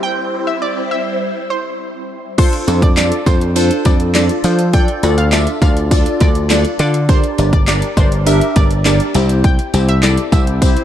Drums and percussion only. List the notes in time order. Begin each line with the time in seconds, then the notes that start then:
2.38 kick, closed hi-hat, crash, tambourine
2.53 closed hi-hat
2.68 closed hi-hat, tambourine
2.82 kick, closed hi-hat
2.97 snare, clap, closed hi-hat, tambourine
3.12 closed hi-hat
3.26 kick, closed hi-hat, tambourine
3.41 closed hi-hat
3.56 closed hi-hat, tambourine
3.71 closed hi-hat
3.85 kick, closed hi-hat, tambourine
4.00 closed hi-hat
4.15 snare, clap, closed hi-hat, tambourine
4.29 closed hi-hat
4.44 closed hi-hat, tambourine
4.59 closed hi-hat
4.73 kick, closed hi-hat
4.88 closed hi-hat
5.03 closed hi-hat, tambourine
5.18 closed hi-hat
5.32 snare, clap, closed hi-hat, tambourine
5.47 closed hi-hat
5.62 kick, closed hi-hat, tambourine
5.77 closed hi-hat
5.91 kick, closed hi-hat, tambourine
6.06 closed hi-hat
6.20 kick, closed hi-hat, tambourine
6.35 closed hi-hat
6.50 snare, clap, closed hi-hat, tambourine
6.65 closed hi-hat
6.79 closed hi-hat, tambourine
6.94 closed hi-hat
7.09 kick, closed hi-hat
7.24 closed hi-hat
7.38 closed hi-hat, tambourine
7.53 kick, closed hi-hat
7.68 snare, clap, closed hi-hat, tambourine
7.82 closed hi-hat
7.97 kick, closed hi-hat, tambourine
8.12 closed hi-hat
8.26 closed hi-hat, tambourine
8.41 closed hi-hat
8.56 kick, closed hi-hat, tambourine
8.71 closed hi-hat
8.85 snare, clap, closed hi-hat, tambourine
9.00 closed hi-hat
9.15 closed hi-hat, tambourine
9.29 closed hi-hat
9.44 kick, closed hi-hat, tambourine
9.59 closed hi-hat
9.74 closed hi-hat, tambourine
9.89 closed hi-hat
10.03 snare, clap, closed hi-hat, tambourine
10.17 closed hi-hat
10.32 kick, closed hi-hat, tambourine
10.47 closed hi-hat
10.62 kick, closed hi-hat, tambourine
10.77 closed hi-hat